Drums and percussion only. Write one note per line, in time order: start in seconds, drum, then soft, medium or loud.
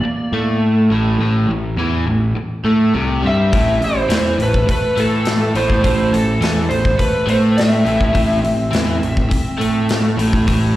3.53 kick loud
3.53 open hi-hat medium
3.82 open hi-hat soft
4.10 snare loud
4.10 open hi-hat medium
4.40 open hi-hat soft
4.54 kick medium
4.69 kick medium
4.69 open hi-hat medium
4.97 open hi-hat soft
5.25 snare loud
5.25 open hi-hat medium
5.55 open hi-hat soft
5.70 kick medium
5.84 kick medium
5.84 open hi-hat medium
6.14 open hi-hat medium
6.42 snare loud
6.42 open hi-hat medium
6.71 open hi-hat soft
6.85 kick medium
6.99 kick medium
6.99 open hi-hat medium
7.29 open hi-hat soft
7.58 snare medium
7.58 open hi-hat medium
7.87 open hi-hat soft
8.01 kick medium
8.15 kick medium
8.15 open hi-hat medium
8.45 open hi-hat soft
8.73 snare loud
8.73 open hi-hat medium
9.03 open hi-hat soft
9.17 kick medium
9.31 kick medium
9.31 open hi-hat medium
9.61 open hi-hat medium
9.89 snare loud
9.89 open hi-hat medium
10.19 open hi-hat medium
10.33 kick medium
10.48 kick medium
10.48 open hi-hat medium